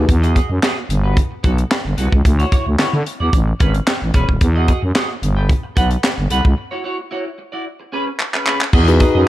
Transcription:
0.08 fm bass E2, muted clean electric guitar stroke, kick, closed hi-hat
0.22 clean electric guitar F#4 G#4 D#5, closed hi-hat
0.35 clean electric guitar F#4 G#4 D#5, kick, closed hi-hat
0.50 fm bass F#2, muted clean electric guitar stroke
0.62 clean electric guitar F#4 G#4 D#5, snare, clap, closed hi-hat
0.76 muted clean electric guitar stroke
0.89 fm bass G1, muted clean electric guitar stroke, closed hi-hat
1.04 clean electric guitar B3 F#4 B4
1.17 kick, closed hi-hat
1.31 muted clean electric guitar stroke
1.43 fm bass B1, clean electric guitar B3 F#4 A4, kick, closed hi-hat
1.58 muted clean electric guitar stroke, closed hi-hat
1.71 snare, clap, closed hi-hat
1.85 fm bass G1, muted clean electric guitar stroke
1.97 fm bass C2, clean electric guitar B3 F#4 A4, closed hi-hat
2.12 fm bass C#2, muted clean electric guitar stroke, kick
2.25 fm bass D2, muted clean electric guitar stroke, kick, closed hi-hat
2.39 clean electric guitar E4 F#4 C#5, closed hi-hat
2.52 clean electric guitar E4 F#4 C#5, kick, closed hi-hat
2.66 fm bass D2, muted clean electric guitar stroke
2.79 fm bass D3, clean electric guitar E4 F#4 C#5, snare, clap, closed hi-hat
2.93 fm bass D3, muted clean electric guitar stroke
3.06 muted clean electric guitar stroke, closed hi-hat
3.20 fm bass E2, clean electric guitar E4 F#4 D5
3.33 fm bass A1, kick, closed hi-hat
3.47 muted clean electric guitar stroke
3.60 fm bass G#1, clean electric guitar C#4 G#4 B4, kick, closed hi-hat
3.74 muted clean electric guitar stroke, closed hi-hat
3.87 muted clean electric guitar stroke, snare, clap, closed hi-hat
4.02 fm bass A1, muted clean electric guitar stroke
4.14 fm bass E1, clean electric guitar C#4 G#4 B4, kick, closed hi-hat
4.29 fm bass D#1, muted clean electric guitar stroke, kick
4.41 fm bass E2, muted clean electric guitar stroke, kick, closed hi-hat
4.55 clean electric guitar F#4 G#4 D#5
4.68 clean electric guitar F#4 G#4 D#5, kick, closed hi-hat
4.82 fm bass F#2, muted clean electric guitar stroke
4.95 clean electric guitar F#4 G#4 D#5, snare, clap, closed hi-hat
5.10 muted clean electric guitar stroke
5.22 fm bass G1, muted clean electric guitar stroke, closed hi-hat
5.36 clean electric guitar A4 B4 G5
5.49 kick, closed hi-hat
5.63 muted clean electric guitar stroke
5.76 fm bass B1, clean electric guitar A4 B4 F#5, kick, closed hi-hat
5.91 muted clean electric guitar stroke, closed hi-hat
6.03 muted clean electric guitar stroke, snare, clap, closed hi-hat
6.17 fm bass G1, muted clean electric guitar stroke
6.30 fm bass C2, clean electric guitar A4 B4 F#5, closed hi-hat
6.44 fm bass C#2, muted clean electric guitar stroke, kick
6.57 muted clean electric guitar stroke
6.71 clean electric guitar E4 F#4 C#5
6.84 clean electric guitar E4 F#4 C#5
6.98 muted clean electric guitar stroke
7.11 clean electric guitar E4 F#4 C#5
7.25 muted clean electric guitar stroke
7.38 muted clean electric guitar stroke
7.52 clean electric guitar E4 F#4 D5
7.80 muted clean electric guitar stroke
7.92 clean electric guitar C#4 G#4 B4
8.07 muted clean electric guitar stroke
8.19 muted clean electric guitar stroke, clap
8.34 clean electric guitar C#4 G#4 B4, clap
8.46 clean electric guitar C#4 G#4 B4, clap
8.61 muted clean electric guitar stroke, clap
8.73 fm bass E2, clean electric guitar F#4 G#4 D#5, kick, crash
8.88 tine electric piano D#4 F#4 G#4 B4, muted clean electric guitar stroke, closed hi-hat
9.00 tine electric piano D#4 F#4 G#4 B4, clean electric guitar F#4 G#4 D#5, kick, closed hi-hat
9.15 fm bass F#2, clean electric guitar F#4 G#4 D#5

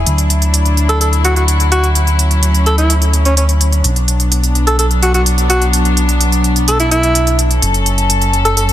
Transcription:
0.06 analog synth bass D2, string section F#3 D4 E4, closed hi-hat
0.18 closed hi-hat
0.30 closed hi-hat
0.42 closed hi-hat
0.54 closed hi-hat
0.66 closed hi-hat
0.77 closed hi-hat
0.89 alto saxophone A4, closed hi-hat
1.01 alto saxophone A4, closed hi-hat
1.13 closed hi-hat
1.24 alto saxophone F#4, closed hi-hat
1.36 alto saxophone F#4, closed hi-hat
1.48 closed hi-hat
1.60 closed hi-hat
1.72 alto saxophone F#4, closed hi-hat
1.84 closed hi-hat
1.95 string section C#4, closed hi-hat
2.07 closed hi-hat
2.19 closed hi-hat
2.31 closed hi-hat
2.43 closed hi-hat
2.54 closed hi-hat
2.66 alto saxophone A4, closed hi-hat
2.78 alto saxophone E4, closed hi-hat
2.90 closed hi-hat
3.02 closed hi-hat
3.13 closed hi-hat
3.25 alto saxophone C#4, closed hi-hat
3.37 alto saxophone C#4, closed hi-hat
3.49 closed hi-hat
3.61 closed hi-hat
3.73 closed hi-hat
3.84 analog synth bass B1, string section F#3 B3 D4, closed hi-hat
3.96 closed hi-hat
4.08 closed hi-hat
4.20 closed hi-hat
4.32 closed hi-hat
4.44 closed hi-hat
4.55 closed hi-hat
4.67 alto saxophone A4, closed hi-hat
4.79 alto saxophone A4, closed hi-hat
4.91 closed hi-hat
5.02 alto saxophone F#4, closed hi-hat
5.14 alto saxophone F#4, closed hi-hat
5.26 closed hi-hat
5.38 closed hi-hat
5.50 alto saxophone F#4, closed hi-hat
5.62 closed hi-hat
5.73 closed hi-hat
5.85 closed hi-hat
5.97 closed hi-hat
6.09 closed hi-hat
6.21 closed hi-hat
6.32 closed hi-hat
6.44 closed hi-hat
6.56 closed hi-hat
6.68 alto saxophone A4, closed hi-hat
6.80 alto saxophone E4, closed hi-hat
6.91 alto saxophone E4, closed hi-hat
7.03 closed hi-hat
7.15 closed hi-hat
7.27 closed hi-hat
7.39 closed hi-hat
7.51 closed hi-hat
7.62 analog synth bass F#1, string section F#3 C#4 A4, closed hi-hat
7.74 closed hi-hat
7.86 closed hi-hat
7.98 closed hi-hat
8.10 closed hi-hat
8.22 closed hi-hat
8.33 closed hi-hat
8.45 alto saxophone A4, closed hi-hat
8.57 alto saxophone A4, closed hi-hat
8.69 closed hi-hat

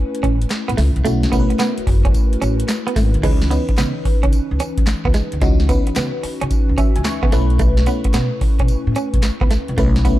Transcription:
Already playing: fm electric piano A3 C#4 E4 B4
0.15 closed hi-hat
0.23 upright bass A1, clean electric guitar C#4, kick, closed hi-hat
0.42 closed hi-hat
0.50 muted clean electric guitar stroke, snare, clap, closed hi-hat
0.68 upright bass A1, clean electric guitar B3, closed hi-hat
0.77 upright bass C#2, clean electric guitar A3, snare, open hi-hat
0.96 upright bass C2, closed hi-hat
1.05 upright bass B1, clean electric guitar A3, fm electric piano A3 C#4 E4 F#4, closed hi-hat, tambourine
1.23 snare, closed hi-hat
1.32 upright bass B1, fm electric piano A3 C#4 E4 A#4, clean electric guitar B3, kick, closed hi-hat, tambourine
1.40 fm electric piano B4
1.50 muted clean electric guitar stroke, closed hi-hat
1.59 clean electric guitar B3, snare, clap, closed hi-hat, tambourine
1.78 muted upright bass stroke, closed hi-hat
1.87 upright bass F#1, muted clean electric guitar stroke, kick, open hi-hat
2.05 clean electric guitar C#4, kick, closed hi-hat
2.14 kick, closed hi-hat, tambourine
2.33 closed hi-hat
2.42 upright bass A1, clean electric guitar C#4, closed hi-hat, tambourine
2.60 closed hi-hat
2.69 muted clean electric guitar stroke, snare, clap, closed hi-hat, tambourine
2.87 clean electric guitar B3, closed hi-hat
2.96 upright bass G#1, clean electric guitar A3, kick, snare, open hi-hat, tambourine
3.14 upright bass D2, closed hi-hat
3.23 upright bass C#2, fm electric piano E3 C#4 D#4 B4, clean electric guitar G#3, kick, closed hi-hat, crash, tambourine
3.42 snare
3.50 fm electric piano E3 C#4 D#4 B4, clean electric guitar B3, closed hi-hat, tambourine
3.69 muted clean electric guitar stroke, kick, closed hi-hat
3.78 upright bass C#3, clean electric guitar B3, snare, clap, closed hi-hat, tambourine
4.05 muted upright bass stroke, muted clean electric guitar stroke, kick, open hi-hat
4.23 upright bass C#3, clean electric guitar C#4, kick, closed hi-hat
4.32 closed hi-hat, tambourine
4.51 upright bass C#2
4.60 clean electric guitar C#4, closed hi-hat, tambourine
4.78 upright bass E2, kick, closed hi-hat
4.87 muted clean electric guitar stroke, muted upright bass stroke, snare, clap, closed hi-hat, tambourine
5.05 upright bass C#2, clean electric guitar B3, kick
5.14 clean electric guitar G#3, snare, closed hi-hat, tambourine
5.32 upright bass D2, closed hi-hat
5.41 upright bass C#2, fm electric piano E3 C#4 D#4 F#4, clean electric guitar G#3, kick, closed hi-hat, tambourine
5.60 snare
5.69 fm electric piano E3 C#4 D#4 B4, clean electric guitar B3, kick, closed hi-hat, tambourine
5.87 muted clean electric guitar stroke, closed hi-hat
5.96 upright bass C#3, clean electric guitar B3, snare, clap, closed hi-hat, tambourine
6.23 muted clean electric guitar stroke, muted upright bass stroke, open hi-hat
6.41 upright bass C#3, clean electric guitar C#4, closed hi-hat
6.50 kick, closed hi-hat, tambourine
6.69 upright bass C#2
6.78 clean electric guitar C#4, fm electric piano E5, kick, closed hi-hat, tambourine
6.96 upright bass C#2, fm electric piano G#5, closed hi-hat
7.05 fm electric piano C#6, muted clean electric guitar stroke, snare, clap, closed hi-hat, tambourine
7.23 upright bass C#3, clean electric guitar B3, kick
7.32 upright bass B1, fm electric piano A3 C#4 E4 B4, clean electric guitar A3, snare, closed hi-hat, tambourine
7.50 closed hi-hat
7.59 clean electric guitar A3, kick, closed hi-hat, tambourine
7.77 snare
7.86 fm electric piano A3 C#4 E4 B4, clean electric guitar B3, closed hi-hat, tambourine
8.04 muted clean electric guitar stroke, kick, closed hi-hat
8.14 upright bass B2, clean electric guitar B3, snare, clap, closed hi-hat, tambourine
8.41 muted upright bass stroke, muted clean electric guitar stroke, kick, open hi-hat
8.59 upright bass B2, clean electric guitar C#4, kick, closed hi-hat
8.68 closed hi-hat, tambourine
8.87 upright bass A2
8.95 clean electric guitar C#4, closed hi-hat, tambourine
9.14 upright bass B1, kick, closed hi-hat
9.23 muted clean electric guitar stroke, muted upright bass stroke, snare, clap, closed hi-hat, tambourine
9.41 upright bass C#2, clean electric guitar B3, kick
9.51 clean electric guitar A3, snare, closed hi-hat, tambourine
9.68 upright bass C2, closed hi-hat
9.77 upright bass B1, fm electric piano A3 C#4 E4 B4, clean electric guitar A3, kick, closed hi-hat, tambourine
9.96 snare
10.05 fm electric piano A3 C#4 E4 B4, clean electric guitar B3, kick, closed hi-hat, tambourine

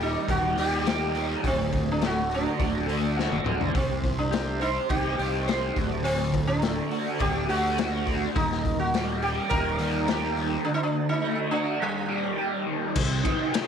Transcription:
Already playing: fingered electric bass D#1, overdriven electric guitar D#2 G3, tonewheel organ G4 D#5 A#5
0.00 sitar D#4, overdriven electric guitar G4, open hi-hat
0.28 fingered electric bass D#1, overdriven electric guitar D#3, sitar F#4, kick, open hi-hat
0.56 fingered electric bass D#2, overdriven electric guitar G3, sitar G4, open hi-hat
0.86 overdriven electric guitar G4, snare, open hi-hat
1.15 overdriven electric guitar D#3, open hi-hat
1.43 fingered electric bass D1, overdriven electric guitar D2, sitar C4, tonewheel organ F#4 D5 A5, kick, open hi-hat
1.73 kick, open hi-hat
1.92 sitar D4
2.01 overdriven electric guitar A3, snare, open hi-hat
2.06 sitar F#4
2.30 overdriven electric guitar F#4, open hi-hat
2.34 sitar D4
2.59 fingered electric bass D1, overdriven electric guitar D3, kick, open hi-hat
2.86 fingered electric bass D2, overdriven electric guitar A3, open hi-hat
3.17 overdriven electric guitar F#4, snare
3.30 fingered electric bass F#1, high tom
3.44 fingered electric bass D1, overdriven electric guitar D3, mid tom
3.60 fingered electric bass C2, floor tom
3.74 fingered electric bass C2, overdriven electric guitar C3, sitar C4, tonewheel organ G4 C5 C6, kick, open hi-hat
4.04 kick, open hi-hat
4.18 sitar D4
4.31 overdriven electric guitar G4, snare, open hi-hat
4.60 sitar D#4, overdriven electric guitar C5, open hi-hat
4.89 fingered electric bass C2, overdriven electric guitar D#4, sitar G4, kick, open hi-hat
5.18 fingered electric bass C2, overdriven electric guitar G4, open hi-hat
5.47 overdriven electric guitar C5, snare, open hi-hat
5.76 fingered electric bass D1, overdriven electric guitar D2, tonewheel organ F#4 D5 A5, kick, open hi-hat
6.04 overdriven electric guitar D2, sitar C4, open hi-hat
6.33 kick, open hi-hat
6.47 sitar D4
6.62 overdriven electric guitar A3, snare, open hi-hat
6.91 overdriven electric guitar F#4, open hi-hat
7.20 fingered electric bass D1, overdriven electric guitar D3, sitar G4, kick, open hi-hat
7.49 fingered electric bass D2, overdriven electric guitar A3, sitar F#4, open hi-hat
7.78 overdriven electric guitar F#4, snare, open hi-hat
8.07 overdriven electric guitar D3, kick, open hi-hat
8.35 fingered electric bass D#1, overdriven electric guitar D#2, tonewheel organ G3 D#5 A#5, sitar D#4, kick, open hi-hat
8.52 snare
8.65 kick, open hi-hat
8.79 sitar F#4
8.94 overdriven electric guitar G3, snare, open hi-hat
9.22 sitar G4, overdriven electric guitar G4, open hi-hat
9.49 fingered electric bass D#1, overdriven electric guitar D#3, sitar A#4, kick, open hi-hat
9.79 fingered electric bass D#2, overdriven electric guitar G3, open hi-hat
10.07 overdriven electric guitar G4, snare, open hi-hat
10.24 snare
10.37 overdriven electric guitar D#3, open hi-hat
10.65 overdriven electric guitar D2, sitar D4, tonewheel organ F#4 D5 A5
10.74 sitar D#4
10.83 sitar D4
11.09 sitar D#4
11.24 overdriven electric guitar A3
11.51 sitar D4, overdriven electric guitar F#4
11.81 overdriven electric guitar D#2, sitar G3, tonewheel organ G4 D#5 A#5
12.09 overdriven electric guitar G3
12.38 overdriven electric guitar G4
12.66 overdriven electric guitar D#3
12.95 fingered electric bass C2, overdriven electric guitar C3, tonewheel organ G4 D#5 C6, kick, crash
13.24 overdriven electric guitar D#4, kick, ride
13.53 overdriven electric guitar G4, snare, ride

